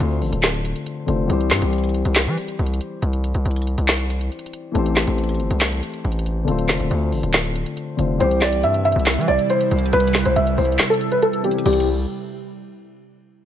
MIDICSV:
0, 0, Header, 1, 6, 480
1, 0, Start_track
1, 0, Key_signature, 0, "major"
1, 0, Tempo, 431655
1, 1442, Time_signature, 4, 2, 24, 8
1, 14956, End_track
2, 0, Start_track
2, 0, Title_t, "Felt piano"
2, 0, Program_c, 0, 0
2, 9121, Note_on_c, 0, 72, 87
2, 9329, Note_off_c, 0, 72, 0
2, 9363, Note_on_c, 0, 74, 78
2, 9569, Note_off_c, 0, 74, 0
2, 9604, Note_on_c, 0, 76, 83
2, 9810, Note_off_c, 0, 76, 0
2, 9841, Note_on_c, 0, 76, 85
2, 10293, Note_off_c, 0, 76, 0
2, 10319, Note_on_c, 0, 74, 82
2, 10527, Note_off_c, 0, 74, 0
2, 10563, Note_on_c, 0, 72, 86
2, 11014, Note_off_c, 0, 72, 0
2, 11042, Note_on_c, 0, 71, 96
2, 11381, Note_off_c, 0, 71, 0
2, 11401, Note_on_c, 0, 72, 91
2, 11505, Note_off_c, 0, 72, 0
2, 11521, Note_on_c, 0, 76, 81
2, 11728, Note_off_c, 0, 76, 0
2, 11763, Note_on_c, 0, 72, 75
2, 12101, Note_off_c, 0, 72, 0
2, 12121, Note_on_c, 0, 69, 76
2, 12328, Note_off_c, 0, 69, 0
2, 12361, Note_on_c, 0, 71, 85
2, 12465, Note_off_c, 0, 71, 0
2, 12481, Note_on_c, 0, 69, 90
2, 12689, Note_off_c, 0, 69, 0
2, 12724, Note_on_c, 0, 67, 85
2, 12930, Note_off_c, 0, 67, 0
2, 12962, Note_on_c, 0, 67, 85
2, 13186, Note_off_c, 0, 67, 0
2, 14956, End_track
3, 0, Start_track
3, 0, Title_t, "Grand piano"
3, 0, Program_c, 1, 0
3, 0, Control_c, 1, 64, 127
3, 0, Note_on_c, 1, 50, 62
3, 0, Note_on_c, 1, 57, 63
3, 0, Note_on_c, 1, 60, 63
3, 0, Note_on_c, 1, 65, 60
3, 0, Note_on_c, 1, 72, 70
3, 1150, Note_off_c, 1, 50, 0
3, 1160, Note_off_c, 1, 57, 0
3, 1170, Note_off_c, 1, 60, 0
3, 1180, Note_off_c, 1, 65, 0
3, 1182, Note_on_c, 1, 50, 55
3, 1190, Note_off_c, 1, 72, 0
3, 1191, Note_on_c, 1, 57, 43
3, 1201, Note_on_c, 1, 60, 45
3, 1211, Note_on_c, 1, 65, 48
3, 1221, Note_on_c, 1, 72, 60
3, 1400, Note_on_c, 1, 52, 64
3, 1419, Note_on_c, 1, 55, 63
3, 1422, Note_off_c, 1, 60, 0
3, 1432, Note_off_c, 1, 50, 0
3, 1437, Note_off_c, 1, 57, 0
3, 1439, Note_on_c, 1, 60, 61
3, 1447, Note_off_c, 1, 65, 0
3, 1452, Note_off_c, 1, 72, 0
3, 1457, Control_c, 1, 64, 0
3, 1458, Note_on_c, 1, 67, 61
3, 1477, Note_on_c, 1, 72, 74
3, 1676, Control_c, 1, 64, 127
3, 5217, Note_off_c, 1, 52, 0
3, 5226, Note_off_c, 1, 55, 0
3, 5236, Note_off_c, 1, 60, 0
3, 5245, Note_on_c, 1, 52, 68
3, 5246, Note_off_c, 1, 67, 0
3, 5255, Note_off_c, 1, 72, 0
3, 5264, Note_on_c, 1, 57, 62
3, 5283, Note_on_c, 1, 60, 65
3, 5299, Control_c, 1, 64, 0
3, 5303, Note_on_c, 1, 67, 55
3, 5322, Note_on_c, 1, 72, 77
3, 5485, Control_c, 1, 64, 127
3, 7145, Note_off_c, 1, 52, 0
3, 7155, Note_off_c, 1, 57, 0
3, 7165, Note_off_c, 1, 60, 0
3, 7166, Note_on_c, 1, 50, 59
3, 7175, Note_off_c, 1, 67, 0
3, 7184, Note_off_c, 1, 72, 0
3, 7185, Note_on_c, 1, 57, 60
3, 7204, Note_on_c, 1, 60, 60
3, 7217, Control_c, 1, 64, 0
3, 7224, Note_on_c, 1, 65, 59
3, 7243, Note_on_c, 1, 72, 69
3, 7410, Control_c, 1, 64, 127
3, 8830, Note_off_c, 1, 50, 0
3, 8840, Note_off_c, 1, 57, 0
3, 8850, Note_off_c, 1, 60, 0
3, 8860, Note_off_c, 1, 65, 0
3, 8861, Note_on_c, 1, 50, 56
3, 8869, Note_off_c, 1, 72, 0
3, 8871, Note_on_c, 1, 57, 43
3, 8881, Note_on_c, 1, 60, 45
3, 8891, Note_on_c, 1, 65, 47
3, 8901, Note_on_c, 1, 72, 60
3, 9085, Note_on_c, 1, 52, 68
3, 9111, Note_on_c, 1, 55, 64
3, 9112, Note_off_c, 1, 50, 0
3, 9117, Note_off_c, 1, 57, 0
3, 9120, Note_off_c, 1, 60, 0
3, 9127, Note_off_c, 1, 65, 0
3, 9132, Note_off_c, 1, 72, 0
3, 9136, Control_c, 1, 64, 0
3, 9137, Note_on_c, 1, 60, 63
3, 9163, Note_on_c, 1, 67, 78
3, 9308, Control_c, 1, 64, 127
3, 12659, Note_off_c, 1, 52, 0
3, 12672, Note_off_c, 1, 55, 0
3, 12685, Note_off_c, 1, 60, 0
3, 12698, Note_off_c, 1, 67, 0
3, 12706, Note_on_c, 1, 52, 51
3, 12719, Note_on_c, 1, 55, 47
3, 12732, Note_on_c, 1, 60, 47
3, 12745, Note_on_c, 1, 67, 56
3, 12946, Note_off_c, 1, 52, 0
3, 12946, Note_off_c, 1, 55, 0
3, 12946, Note_off_c, 1, 60, 0
3, 12946, Note_off_c, 1, 67, 0
3, 12962, Note_on_c, 1, 52, 84
3, 12963, Note_on_c, 1, 55, 79
3, 12963, Note_on_c, 1, 60, 76
3, 12963, Note_on_c, 1, 67, 96
3, 12977, Control_c, 1, 64, 0
3, 13186, Note_off_c, 1, 52, 0
3, 13186, Note_off_c, 1, 55, 0
3, 13186, Note_off_c, 1, 60, 0
3, 13186, Note_off_c, 1, 67, 0
3, 14956, End_track
4, 0, Start_track
4, 0, Title_t, "Analog synth pad"
4, 0, Program_c, 2, 89
4, 9122, Note_on_c, 2, 55, 78
4, 9122, Note_on_c, 2, 64, 96
4, 9123, Note_on_c, 2, 48, 85
4, 12924, Note_off_c, 2, 48, 0
4, 12924, Note_off_c, 2, 55, 0
4, 12924, Note_off_c, 2, 64, 0
4, 14956, End_track
5, 0, Start_track
5, 0, Title_t, "808-style bass"
5, 0, Program_c, 3, 38
5, 3, Note_on_c, 3, 38, 111
5, 242, Note_on_c, 3, 33, 102
5, 259, Note_off_c, 3, 38, 0
5, 356, Note_off_c, 3, 33, 0
5, 362, Note_on_c, 3, 26, 104
5, 823, Note_off_c, 3, 26, 0
5, 1203, Note_on_c, 3, 29, 104
5, 1433, Note_off_c, 3, 29, 0
5, 1441, Note_on_c, 3, 36, 103
5, 1681, Note_on_c, 3, 43, 102
5, 1698, Note_off_c, 3, 36, 0
5, 1796, Note_off_c, 3, 43, 0
5, 1801, Note_on_c, 3, 36, 102
5, 2263, Note_off_c, 3, 36, 0
5, 2282, Note_on_c, 3, 36, 107
5, 2521, Note_on_c, 3, 52, 103
5, 2538, Note_off_c, 3, 36, 0
5, 2636, Note_off_c, 3, 52, 0
5, 2882, Note_on_c, 3, 36, 105
5, 3112, Note_off_c, 3, 36, 0
5, 3362, Note_on_c, 3, 36, 113
5, 3708, Note_off_c, 3, 36, 0
5, 3721, Note_on_c, 3, 36, 103
5, 3835, Note_off_c, 3, 36, 0
5, 3841, Note_on_c, 3, 36, 107
5, 4187, Note_off_c, 3, 36, 0
5, 4202, Note_on_c, 3, 36, 100
5, 4778, Note_off_c, 3, 36, 0
5, 5282, Note_on_c, 3, 33, 112
5, 5628, Note_off_c, 3, 33, 0
5, 5642, Note_on_c, 3, 33, 110
5, 6003, Note_on_c, 3, 31, 101
5, 6020, Note_off_c, 3, 33, 0
5, 6117, Note_off_c, 3, 31, 0
5, 6122, Note_on_c, 3, 36, 98
5, 6468, Note_off_c, 3, 36, 0
5, 6723, Note_on_c, 3, 33, 108
5, 7184, Note_off_c, 3, 33, 0
5, 7204, Note_on_c, 3, 26, 105
5, 7443, Note_on_c, 3, 29, 100
5, 7460, Note_off_c, 3, 26, 0
5, 7557, Note_off_c, 3, 29, 0
5, 7563, Note_on_c, 3, 26, 100
5, 7678, Note_off_c, 3, 26, 0
5, 7683, Note_on_c, 3, 38, 111
5, 7923, Note_on_c, 3, 33, 100
5, 7940, Note_off_c, 3, 38, 0
5, 8037, Note_off_c, 3, 33, 0
5, 8044, Note_on_c, 3, 26, 104
5, 8504, Note_off_c, 3, 26, 0
5, 8882, Note_on_c, 3, 29, 98
5, 9113, Note_off_c, 3, 29, 0
5, 9123, Note_on_c, 3, 36, 103
5, 9603, Note_on_c, 3, 43, 102
5, 9619, Note_off_c, 3, 36, 0
5, 9945, Note_off_c, 3, 43, 0
5, 9962, Note_on_c, 3, 36, 110
5, 10203, Note_on_c, 3, 52, 100
5, 10220, Note_off_c, 3, 36, 0
5, 10323, Note_on_c, 3, 36, 107
5, 10340, Note_off_c, 3, 52, 0
5, 10437, Note_off_c, 3, 36, 0
5, 10802, Note_on_c, 3, 36, 107
5, 11033, Note_off_c, 3, 36, 0
5, 11042, Note_on_c, 3, 36, 110
5, 11388, Note_off_c, 3, 36, 0
5, 11402, Note_on_c, 3, 36, 104
5, 11515, Note_off_c, 3, 36, 0
5, 11522, Note_on_c, 3, 36, 107
5, 11753, Note_off_c, 3, 36, 0
5, 11763, Note_on_c, 3, 36, 106
5, 11993, Note_off_c, 3, 36, 0
5, 12962, Note_on_c, 3, 36, 111
5, 13409, Note_off_c, 3, 36, 0
5, 14956, End_track
6, 0, Start_track
6, 0, Title_t, "Drums"
6, 3, Note_on_c, 9, 42, 68
6, 114, Note_off_c, 9, 42, 0
6, 243, Note_on_c, 9, 46, 78
6, 354, Note_off_c, 9, 46, 0
6, 363, Note_on_c, 9, 42, 84
6, 474, Note_off_c, 9, 42, 0
6, 476, Note_on_c, 9, 39, 94
6, 482, Note_on_c, 9, 42, 78
6, 484, Note_on_c, 9, 38, 116
6, 587, Note_off_c, 9, 39, 0
6, 594, Note_off_c, 9, 42, 0
6, 595, Note_off_c, 9, 38, 0
6, 604, Note_on_c, 9, 42, 59
6, 715, Note_off_c, 9, 42, 0
6, 723, Note_on_c, 9, 42, 88
6, 834, Note_off_c, 9, 42, 0
6, 842, Note_on_c, 9, 42, 54
6, 953, Note_off_c, 9, 42, 0
6, 961, Note_on_c, 9, 42, 71
6, 1072, Note_off_c, 9, 42, 0
6, 1202, Note_on_c, 9, 42, 76
6, 1313, Note_off_c, 9, 42, 0
6, 1443, Note_on_c, 9, 42, 73
6, 1554, Note_off_c, 9, 42, 0
6, 1564, Note_on_c, 9, 42, 57
6, 1674, Note_on_c, 9, 39, 69
6, 1675, Note_off_c, 9, 42, 0
6, 1682, Note_on_c, 9, 38, 84
6, 1683, Note_on_c, 9, 42, 77
6, 1785, Note_off_c, 9, 39, 0
6, 1793, Note_off_c, 9, 38, 0
6, 1794, Note_off_c, 9, 42, 0
6, 1800, Note_on_c, 9, 42, 56
6, 1911, Note_off_c, 9, 42, 0
6, 1923, Note_on_c, 9, 42, 56
6, 1982, Note_off_c, 9, 42, 0
6, 1982, Note_on_c, 9, 42, 57
6, 2042, Note_off_c, 9, 42, 0
6, 2042, Note_on_c, 9, 42, 57
6, 2102, Note_off_c, 9, 42, 0
6, 2102, Note_on_c, 9, 42, 59
6, 2162, Note_off_c, 9, 42, 0
6, 2162, Note_on_c, 9, 42, 53
6, 2273, Note_off_c, 9, 42, 0
6, 2282, Note_on_c, 9, 42, 87
6, 2393, Note_off_c, 9, 42, 0
6, 2394, Note_on_c, 9, 39, 97
6, 2401, Note_on_c, 9, 42, 83
6, 2402, Note_on_c, 9, 38, 118
6, 2505, Note_off_c, 9, 39, 0
6, 2512, Note_off_c, 9, 42, 0
6, 2514, Note_off_c, 9, 38, 0
6, 2523, Note_on_c, 9, 42, 57
6, 2634, Note_off_c, 9, 42, 0
6, 2642, Note_on_c, 9, 42, 90
6, 2753, Note_off_c, 9, 42, 0
6, 2761, Note_on_c, 9, 42, 59
6, 2872, Note_off_c, 9, 42, 0
6, 2883, Note_on_c, 9, 42, 46
6, 2963, Note_off_c, 9, 42, 0
6, 2963, Note_on_c, 9, 42, 61
6, 3042, Note_off_c, 9, 42, 0
6, 3042, Note_on_c, 9, 42, 72
6, 3122, Note_off_c, 9, 42, 0
6, 3122, Note_on_c, 9, 42, 80
6, 3233, Note_off_c, 9, 42, 0
6, 3362, Note_on_c, 9, 42, 73
6, 3474, Note_off_c, 9, 42, 0
6, 3483, Note_on_c, 9, 42, 58
6, 3594, Note_off_c, 9, 42, 0
6, 3603, Note_on_c, 9, 42, 78
6, 3714, Note_off_c, 9, 42, 0
6, 3719, Note_on_c, 9, 42, 56
6, 3831, Note_off_c, 9, 42, 0
6, 3843, Note_on_c, 9, 42, 58
6, 3902, Note_off_c, 9, 42, 0
6, 3902, Note_on_c, 9, 42, 59
6, 3962, Note_off_c, 9, 42, 0
6, 3962, Note_on_c, 9, 42, 60
6, 4023, Note_off_c, 9, 42, 0
6, 4023, Note_on_c, 9, 42, 57
6, 4083, Note_off_c, 9, 42, 0
6, 4083, Note_on_c, 9, 42, 54
6, 4194, Note_off_c, 9, 42, 0
6, 4203, Note_on_c, 9, 42, 88
6, 4314, Note_off_c, 9, 42, 0
6, 4315, Note_on_c, 9, 39, 95
6, 4322, Note_on_c, 9, 42, 80
6, 4323, Note_on_c, 9, 38, 119
6, 4426, Note_off_c, 9, 39, 0
6, 4433, Note_off_c, 9, 42, 0
6, 4434, Note_off_c, 9, 38, 0
6, 4443, Note_on_c, 9, 42, 58
6, 4554, Note_off_c, 9, 42, 0
6, 4562, Note_on_c, 9, 42, 88
6, 4673, Note_off_c, 9, 42, 0
6, 4681, Note_on_c, 9, 42, 56
6, 4792, Note_off_c, 9, 42, 0
6, 4803, Note_on_c, 9, 42, 46
6, 4882, Note_off_c, 9, 42, 0
6, 4882, Note_on_c, 9, 42, 57
6, 4962, Note_off_c, 9, 42, 0
6, 4962, Note_on_c, 9, 42, 76
6, 5042, Note_off_c, 9, 42, 0
6, 5042, Note_on_c, 9, 42, 78
6, 5153, Note_off_c, 9, 42, 0
6, 5283, Note_on_c, 9, 42, 74
6, 5394, Note_off_c, 9, 42, 0
6, 5404, Note_on_c, 9, 42, 57
6, 5515, Note_off_c, 9, 42, 0
6, 5515, Note_on_c, 9, 39, 68
6, 5523, Note_on_c, 9, 38, 87
6, 5523, Note_on_c, 9, 42, 82
6, 5626, Note_off_c, 9, 39, 0
6, 5634, Note_off_c, 9, 38, 0
6, 5634, Note_off_c, 9, 42, 0
6, 5641, Note_on_c, 9, 42, 56
6, 5752, Note_off_c, 9, 42, 0
6, 5763, Note_on_c, 9, 42, 58
6, 5823, Note_off_c, 9, 42, 0
6, 5823, Note_on_c, 9, 42, 57
6, 5883, Note_off_c, 9, 42, 0
6, 5883, Note_on_c, 9, 42, 59
6, 5943, Note_off_c, 9, 42, 0
6, 5943, Note_on_c, 9, 42, 58
6, 6003, Note_off_c, 9, 42, 0
6, 6003, Note_on_c, 9, 42, 56
6, 6114, Note_off_c, 9, 42, 0
6, 6123, Note_on_c, 9, 42, 86
6, 6234, Note_off_c, 9, 42, 0
6, 6235, Note_on_c, 9, 39, 96
6, 6242, Note_on_c, 9, 42, 82
6, 6244, Note_on_c, 9, 38, 119
6, 6347, Note_off_c, 9, 39, 0
6, 6354, Note_off_c, 9, 42, 0
6, 6355, Note_off_c, 9, 38, 0
6, 6363, Note_on_c, 9, 42, 61
6, 6475, Note_off_c, 9, 42, 0
6, 6482, Note_on_c, 9, 42, 89
6, 6593, Note_off_c, 9, 42, 0
6, 6602, Note_on_c, 9, 42, 56
6, 6713, Note_off_c, 9, 42, 0
6, 6724, Note_on_c, 9, 42, 46
6, 6804, Note_off_c, 9, 42, 0
6, 6804, Note_on_c, 9, 42, 59
6, 6883, Note_off_c, 9, 42, 0
6, 6883, Note_on_c, 9, 42, 76
6, 6963, Note_off_c, 9, 42, 0
6, 6963, Note_on_c, 9, 42, 77
6, 7074, Note_off_c, 9, 42, 0
6, 7203, Note_on_c, 9, 42, 76
6, 7315, Note_off_c, 9, 42, 0
6, 7324, Note_on_c, 9, 42, 57
6, 7434, Note_on_c, 9, 39, 70
6, 7435, Note_off_c, 9, 42, 0
6, 7442, Note_on_c, 9, 38, 84
6, 7442, Note_on_c, 9, 42, 78
6, 7545, Note_off_c, 9, 39, 0
6, 7553, Note_off_c, 9, 38, 0
6, 7553, Note_off_c, 9, 42, 0
6, 7560, Note_on_c, 9, 42, 56
6, 7671, Note_off_c, 9, 42, 0
6, 7682, Note_on_c, 9, 42, 67
6, 7793, Note_off_c, 9, 42, 0
6, 7922, Note_on_c, 9, 46, 76
6, 8033, Note_off_c, 9, 46, 0
6, 8043, Note_on_c, 9, 42, 89
6, 8154, Note_off_c, 9, 42, 0
6, 8155, Note_on_c, 9, 39, 94
6, 8162, Note_on_c, 9, 42, 79
6, 8163, Note_on_c, 9, 38, 117
6, 8266, Note_off_c, 9, 39, 0
6, 8273, Note_off_c, 9, 42, 0
6, 8274, Note_off_c, 9, 38, 0
6, 8284, Note_on_c, 9, 42, 60
6, 8395, Note_off_c, 9, 42, 0
6, 8402, Note_on_c, 9, 42, 87
6, 8513, Note_off_c, 9, 42, 0
6, 8521, Note_on_c, 9, 42, 55
6, 8632, Note_off_c, 9, 42, 0
6, 8640, Note_on_c, 9, 42, 73
6, 8752, Note_off_c, 9, 42, 0
6, 8882, Note_on_c, 9, 42, 81
6, 8993, Note_off_c, 9, 42, 0
6, 9123, Note_on_c, 9, 42, 76
6, 9234, Note_off_c, 9, 42, 0
6, 9243, Note_on_c, 9, 42, 58
6, 9354, Note_off_c, 9, 42, 0
6, 9354, Note_on_c, 9, 39, 67
6, 9362, Note_on_c, 9, 38, 86
6, 9362, Note_on_c, 9, 42, 79
6, 9465, Note_off_c, 9, 39, 0
6, 9473, Note_off_c, 9, 38, 0
6, 9473, Note_off_c, 9, 42, 0
6, 9480, Note_on_c, 9, 42, 77
6, 9591, Note_off_c, 9, 42, 0
6, 9601, Note_on_c, 9, 42, 70
6, 9712, Note_off_c, 9, 42, 0
6, 9722, Note_on_c, 9, 42, 60
6, 9833, Note_off_c, 9, 42, 0
6, 9842, Note_on_c, 9, 42, 44
6, 9921, Note_off_c, 9, 42, 0
6, 9921, Note_on_c, 9, 42, 49
6, 10002, Note_off_c, 9, 42, 0
6, 10002, Note_on_c, 9, 42, 56
6, 10075, Note_on_c, 9, 39, 93
6, 10082, Note_off_c, 9, 42, 0
6, 10082, Note_on_c, 9, 42, 63
6, 10083, Note_on_c, 9, 38, 119
6, 10162, Note_off_c, 9, 42, 0
6, 10162, Note_on_c, 9, 42, 66
6, 10186, Note_off_c, 9, 39, 0
6, 10194, Note_off_c, 9, 38, 0
6, 10242, Note_off_c, 9, 42, 0
6, 10242, Note_on_c, 9, 42, 75
6, 10321, Note_off_c, 9, 42, 0
6, 10321, Note_on_c, 9, 42, 65
6, 10433, Note_off_c, 9, 42, 0
6, 10441, Note_on_c, 9, 42, 57
6, 10552, Note_off_c, 9, 42, 0
6, 10561, Note_on_c, 9, 42, 80
6, 10672, Note_off_c, 9, 42, 0
6, 10682, Note_on_c, 9, 42, 64
6, 10793, Note_off_c, 9, 42, 0
6, 10802, Note_on_c, 9, 42, 68
6, 10882, Note_off_c, 9, 42, 0
6, 10882, Note_on_c, 9, 42, 68
6, 10961, Note_off_c, 9, 42, 0
6, 10961, Note_on_c, 9, 42, 72
6, 11042, Note_off_c, 9, 42, 0
6, 11042, Note_on_c, 9, 42, 74
6, 11122, Note_off_c, 9, 42, 0
6, 11122, Note_on_c, 9, 42, 72
6, 11202, Note_off_c, 9, 42, 0
6, 11202, Note_on_c, 9, 42, 74
6, 11275, Note_on_c, 9, 39, 69
6, 11283, Note_off_c, 9, 42, 0
6, 11283, Note_on_c, 9, 38, 88
6, 11283, Note_on_c, 9, 42, 80
6, 11386, Note_off_c, 9, 39, 0
6, 11394, Note_off_c, 9, 38, 0
6, 11394, Note_off_c, 9, 42, 0
6, 11401, Note_on_c, 9, 42, 78
6, 11512, Note_off_c, 9, 42, 0
6, 11522, Note_on_c, 9, 42, 72
6, 11634, Note_off_c, 9, 42, 0
6, 11643, Note_on_c, 9, 42, 63
6, 11754, Note_off_c, 9, 42, 0
6, 11763, Note_on_c, 9, 42, 44
6, 11763, Note_on_c, 9, 46, 75
6, 11843, Note_off_c, 9, 42, 0
6, 11843, Note_on_c, 9, 42, 50
6, 11874, Note_off_c, 9, 46, 0
6, 11923, Note_off_c, 9, 42, 0
6, 11923, Note_on_c, 9, 42, 55
6, 11995, Note_on_c, 9, 39, 96
6, 12002, Note_off_c, 9, 42, 0
6, 12002, Note_on_c, 9, 42, 62
6, 12003, Note_on_c, 9, 38, 121
6, 12083, Note_off_c, 9, 42, 0
6, 12083, Note_on_c, 9, 42, 66
6, 12106, Note_off_c, 9, 39, 0
6, 12114, Note_off_c, 9, 38, 0
6, 12162, Note_off_c, 9, 42, 0
6, 12162, Note_on_c, 9, 42, 76
6, 12242, Note_off_c, 9, 42, 0
6, 12242, Note_on_c, 9, 42, 64
6, 12353, Note_off_c, 9, 42, 0
6, 12361, Note_on_c, 9, 42, 55
6, 12472, Note_off_c, 9, 42, 0
6, 12482, Note_on_c, 9, 42, 80
6, 12593, Note_off_c, 9, 42, 0
6, 12603, Note_on_c, 9, 42, 66
6, 12714, Note_off_c, 9, 42, 0
6, 12723, Note_on_c, 9, 42, 66
6, 12803, Note_off_c, 9, 42, 0
6, 12803, Note_on_c, 9, 42, 69
6, 12883, Note_off_c, 9, 42, 0
6, 12883, Note_on_c, 9, 42, 73
6, 12962, Note_off_c, 9, 42, 0
6, 12962, Note_on_c, 9, 42, 70
6, 12962, Note_on_c, 9, 49, 90
6, 13042, Note_off_c, 9, 42, 0
6, 13042, Note_on_c, 9, 42, 70
6, 13074, Note_off_c, 9, 49, 0
6, 13123, Note_off_c, 9, 42, 0
6, 13123, Note_on_c, 9, 42, 74
6, 13234, Note_off_c, 9, 42, 0
6, 14956, End_track
0, 0, End_of_file